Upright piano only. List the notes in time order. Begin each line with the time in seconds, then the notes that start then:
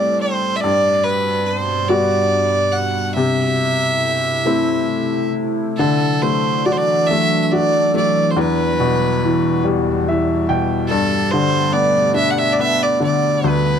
Already playing: A2 A3 C4 G4
0.64 G2
1.89 G3 B3 F#4
3.16 C3
4.46 A3 C4 E4
5.79 D3
6.23 A3
6.66 F#4
7.11 A3
7.53 F#4
7.94 A3
8.37 E2
8.80 B2
9.24 E3
9.64 G3
10.08 E3 E5
10.49 B2 G5
10.91 G2
11.34 D3
11.72 B3
12.14 D4
12.59 B3
13.00 D3
13.44 D2